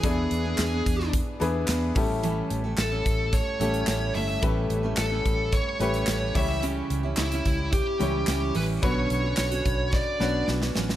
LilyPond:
<<
  \new Staff \with { instrumentName = "Lead electric guitar" } { \time 4/4 \key a \mixolydian \tempo 4 = 109 gis'2 r2 | r4 a'4 cis''4. e''8 | r4 a'4 cis''4. e''8 | r4 e'4 g'4. b'8 |
cis''2 d''4 r4 | }
  \new Staff \with { instrumentName = "Upright piano" } { \time 4/4 \key a \mixolydian <b d' e' gis' d''>4.~ <b d' e' gis' d''>16 r8. <b d' e' gis' b'>4 <a cis' e' g' a'>8~ | <a cis' e' g' a'>4~ <a cis' e' g' a'>16 r4 r16 <a cis' e' g' a'>4. | <a cis' e' g' b'>4.~ <a cis' e' g' b'>16 r8. <a cis' e' g' b'>4 <g cis' e' g' cis''>8~ | <g cis' e' g' cis''>4~ <g cis' e' g' cis''>16 r4 r16 <g cis' e' g' cis''>4. |
<d b fis' b' cis''>4.~ <d b fis' b' cis''>16 r8. <b cis' d' fis' cis''>4. | }
  \new Staff \with { instrumentName = "Upright piano" } { \clef bass \time 4/4 \key a \mixolydian e4. r2 a,8~ | a,4 r2 r8 a,8~ | a,4 r2 r8 cis8~ | cis4 r2. |
b,4. r2 r8 | }
  \new Staff \with { instrumentName = "Steel-string acoustic guitar" } { \time 4/4 \key a \mixolydian <e b d' gis'>8. <b d' gis'>8 <b d' gis'>4~ <b d' gis'>16 <e b d' gis'>8 <e b d' gis'>8 <g a cis' a'>8 | <a, e g a cis' a'>8. <g a cis' a'>8 <g a cis' a'>4~ <g a cis' a'>16 <g a cis' a'>8 <g a cis' a'>8 <g a cis' a'>8 | <a, e g a cis' a'>8. <g a cis' a'>8 <g a cis' a'>4~ <g a cis' a'>16 <g a cis' a'>8 <g a cis' a'>8 <e cis' e' g'>8 | <cis e cis' e' g'>8. <cis' e' g'>8 <cis' e' g'>4~ <cis' e' g'>16 <e cis' e' g'>8 <e cis' e' g'>8 <e cis' e' g'>8 |
<b, fis cis' d' fis'>8. <cis' d' fis'>8 <cis' d' fis'>4~ <cis' d' fis'>16 <fis cis' d' fis'>8 <fis cis' d' fis'>8 <fis cis' d' fis'>8 | }
  \new Staff \with { instrumentName = "Fingered electric bass" } { \clef bass \time 4/4 \key a \mixolydian e,8 e,8 e,8 e,8. r16 e,8 e,8 a,,8~ | a,,8 a,,8 a,,8 a,,8. r16 a,,8 a,,8 g,,8 | a,,8 a,,8 a,,8 a,,8. r16 a,,8 a,,8 cis,8~ | cis,8 cis,8 cis,8 cis,8. r16 cis,8 cis,8 a,,8 |
b,,8 b,,8 b,,8 b,,8. r16 b,,8 b,,8 a,,8 | }
  \new DrumStaff \with { instrumentName = "Drums" } \drummode { \time 4/4 <hh bd>8 hh8 <hc hh sn>8 <hh bd>16 sn16 <hh bd>8 hh8 <hc hh sn>8 <hho bd>8 | hh8 hh8 <hc hh sn>8 <hh bd>8 <hh bd>8 hh16 hh16 <hc hh sn>8 hho8 | <hh bd>8 hh8 <hc hh sn>8 <hh bd>8 <hh bd>8 hh16 hh16 <hc hh sn>8 <hho bd>8 | hh8 hh8 <hc hh sn>16 hh16 <hh bd>8 <hh bd>8 hh8 <hc hh sn>8 hho8 |
<hh bd>8 hh8 <hc hh sn>16 hh16 <hh bd>8 <bd sn>8 sn8 sn16 sn16 sn16 sn16 | }
>>